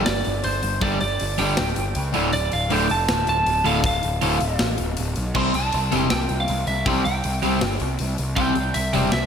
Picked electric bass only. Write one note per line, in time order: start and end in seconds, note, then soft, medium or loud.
0.07 0.22 G1 medium
0.27 0.42 G1 medium
0.45 0.60 G1 medium
0.63 0.79 G1 medium
0.81 0.97 G1 medium
1.02 1.17 G1 medium
1.22 1.36 G1 medium
1.40 1.55 G1 medium
1.59 1.74 D1 medium
1.78 1.92 G1 medium
1.96 2.11 C#2 loud
2.16 2.31 D1 medium
2.34 2.49 D1 medium
2.54 2.68 D1 medium
2.72 2.87 D1 medium
2.91 3.06 F1 medium
3.10 3.25 D1 medium
3.27 3.43 D1 medium
3.46 3.62 D1 medium
3.65 3.81 D1 medium
3.84 4.00 D1 loud
4.04 4.19 D1 medium
4.22 4.38 D1 medium
4.41 4.56 D1 medium
4.61 4.76 A1 medium
4.80 4.95 D1 medium
4.99 5.13 D1 medium
5.17 5.32 B1 medium
5.35 5.50 C2 loud
5.54 5.70 C2 medium
5.74 5.89 C2 medium
5.93 6.08 E1 medium
6.12 6.27 C2 medium
6.30 6.45 C2 medium
6.49 6.64 C2 medium
6.67 6.82 C2 medium
6.86 7.02 C2 medium
7.06 7.21 C2 medium
7.25 7.40 C2 medium
7.44 7.59 C2 medium
7.62 7.77 G1 medium
7.81 7.96 C2 medium
8.00 8.15 C2 loud
8.19 8.34 C2 medium
8.36 8.52 C2 loud
8.56 8.72 C2 medium
8.76 8.91 C2 medium
8.95 9.10 E1 medium
9.14 9.26 C2 medium